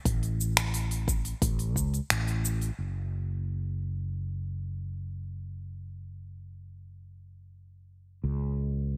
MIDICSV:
0, 0, Header, 1, 3, 480
1, 0, Start_track
1, 0, Key_signature, 3, "minor"
1, 0, Tempo, 681818
1, 38, Time_signature, 4, 2, 24, 8
1, 6316, End_track
2, 0, Start_track
2, 0, Title_t, "Fretless electric bass"
2, 0, Program_c, 0, 35
2, 38, Note_on_c, 0, 33, 94
2, 934, Note_off_c, 0, 33, 0
2, 999, Note_on_c, 0, 33, 91
2, 1239, Note_off_c, 0, 33, 0
2, 1239, Note_on_c, 0, 37, 78
2, 1398, Note_off_c, 0, 37, 0
2, 1480, Note_on_c, 0, 33, 88
2, 1895, Note_off_c, 0, 33, 0
2, 1960, Note_on_c, 0, 30, 73
2, 5775, Note_off_c, 0, 30, 0
2, 5797, Note_on_c, 0, 37, 77
2, 6316, Note_off_c, 0, 37, 0
2, 6316, End_track
3, 0, Start_track
3, 0, Title_t, "Drums"
3, 38, Note_on_c, 9, 36, 107
3, 39, Note_on_c, 9, 46, 62
3, 45, Note_on_c, 9, 82, 39
3, 109, Note_off_c, 9, 36, 0
3, 110, Note_off_c, 9, 46, 0
3, 116, Note_off_c, 9, 82, 0
3, 161, Note_on_c, 9, 46, 31
3, 167, Note_on_c, 9, 82, 21
3, 231, Note_off_c, 9, 46, 0
3, 237, Note_off_c, 9, 82, 0
3, 285, Note_on_c, 9, 82, 65
3, 356, Note_off_c, 9, 82, 0
3, 401, Note_on_c, 9, 26, 73
3, 401, Note_on_c, 9, 46, 31
3, 407, Note_on_c, 9, 82, 30
3, 472, Note_off_c, 9, 26, 0
3, 472, Note_off_c, 9, 46, 0
3, 478, Note_off_c, 9, 82, 0
3, 520, Note_on_c, 9, 46, 65
3, 526, Note_on_c, 9, 82, 37
3, 590, Note_off_c, 9, 46, 0
3, 596, Note_off_c, 9, 82, 0
3, 641, Note_on_c, 9, 46, 47
3, 647, Note_on_c, 9, 82, 21
3, 712, Note_off_c, 9, 46, 0
3, 718, Note_off_c, 9, 82, 0
3, 759, Note_on_c, 9, 36, 91
3, 765, Note_on_c, 9, 82, 77
3, 829, Note_off_c, 9, 36, 0
3, 835, Note_off_c, 9, 82, 0
3, 880, Note_on_c, 9, 46, 42
3, 886, Note_on_c, 9, 82, 31
3, 950, Note_off_c, 9, 46, 0
3, 956, Note_off_c, 9, 82, 0
3, 998, Note_on_c, 9, 36, 113
3, 999, Note_on_c, 9, 46, 71
3, 1005, Note_on_c, 9, 82, 40
3, 1069, Note_off_c, 9, 36, 0
3, 1069, Note_off_c, 9, 46, 0
3, 1075, Note_off_c, 9, 82, 0
3, 1120, Note_on_c, 9, 46, 34
3, 1126, Note_on_c, 9, 82, 21
3, 1190, Note_off_c, 9, 46, 0
3, 1196, Note_off_c, 9, 82, 0
3, 1239, Note_on_c, 9, 36, 58
3, 1246, Note_on_c, 9, 82, 69
3, 1309, Note_off_c, 9, 36, 0
3, 1317, Note_off_c, 9, 82, 0
3, 1364, Note_on_c, 9, 46, 31
3, 1370, Note_on_c, 9, 82, 31
3, 1434, Note_off_c, 9, 46, 0
3, 1440, Note_off_c, 9, 82, 0
3, 1481, Note_on_c, 9, 26, 80
3, 1481, Note_on_c, 9, 46, 67
3, 1487, Note_on_c, 9, 82, 41
3, 1551, Note_off_c, 9, 26, 0
3, 1551, Note_off_c, 9, 46, 0
3, 1557, Note_off_c, 9, 82, 0
3, 1601, Note_on_c, 9, 46, 34
3, 1607, Note_on_c, 9, 82, 21
3, 1672, Note_off_c, 9, 46, 0
3, 1678, Note_off_c, 9, 82, 0
3, 1725, Note_on_c, 9, 82, 75
3, 1796, Note_off_c, 9, 82, 0
3, 1841, Note_on_c, 9, 46, 34
3, 1847, Note_on_c, 9, 82, 31
3, 1911, Note_off_c, 9, 46, 0
3, 1917, Note_off_c, 9, 82, 0
3, 6316, End_track
0, 0, End_of_file